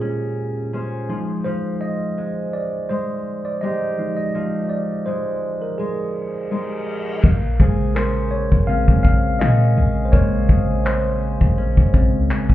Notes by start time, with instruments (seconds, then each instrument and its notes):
Already playing: tine electric piano A#2 G#3 C#4 F4 G4 G#4, steel-string acoustic guitar A#3 G#4 C5, downlifter
0.01 steel-string acoustic guitar C#4
0.73 steel-string acoustic guitar C#4 G#4 C5
1.09 tine electric piano F3 G#3 D#4, steel-string acoustic guitar F3
1.44 steel-string acoustic guitar F3, tine electric piano C5
1.81 tine electric piano D#5
2.18 steel-string acoustic guitar G#3
2.53 tine electric piano D5
2.89 steel-string acoustic guitar G#3, tine electric piano C5
3.45 tine electric piano D5
3.61 steel-string acoustic guitar G#3 D#4 G4, tine electric piano D#5
3.98 tine electric piano F3 G#3 D#4
4.17 tine electric piano D#5
4.35 steel-string acoustic guitar F3
4.69 tine electric piano D5
5.06 steel-string acoustic guitar G#3, tine electric piano C5
5.62 tine electric piano A#4
5.78 steel-string acoustic guitar G#3, tine electric piano G#4, reverse cymbal
6.51 steel-string acoustic guitar G#3 D#4 G4
7.24 808-style bass A#1, steel-string acoustic guitar A#3, kick, crash
7.59 808-style bass A#1, tine electric piano C#3 G#3 C5, steel-string acoustic guitar G#4, kick
7.95 steel-string acoustic guitar C#4 G#4 C5, tine electric piano A#4, clap, closed hi-hat
8.31 tine electric piano C#5, closed hi-hat
8.52 808-style bass A#1, kick
8.67 tine electric piano C#3 G#3 C4 F5, steel-string acoustic guitar C#4, closed hi-hat
8.88 808-style bass A#1, kick
9.03 tine electric piano F5, kick, closed hi-hat
9.39 808-style bass A#2, steel-string acoustic guitar C#4, tine electric piano D#5, clap
9.77 808-style bass A#1, steel-string acoustic guitar G#4, closed hi-hat
10.05 tine electric piano C5
10.12 808-style bass A#1, tine electric piano C#3 G#3 C5 C#5, steel-string acoustic guitar A#3, kick, closed hi-hat
10.49 808-style bass A#1, steel-string acoustic guitar G#4, kick
10.85 steel-string acoustic guitar C#4 G#4 C5, tine electric piano C5, clap, closed hi-hat
11.22 closed hi-hat
11.41 808-style bass A#1, kick
11.58 steel-string acoustic guitar C#4, closed hi-hat
11.77 808-style bass A#1, kick
11.94 tine electric piano C#3 G#3 C4, kick, closed hi-hat
12.14 808-style bass C#2
12.29 808-style bass A#1, steel-string acoustic guitar C#4, clap, closed hi-hat
12.49 808-style bass F1, kick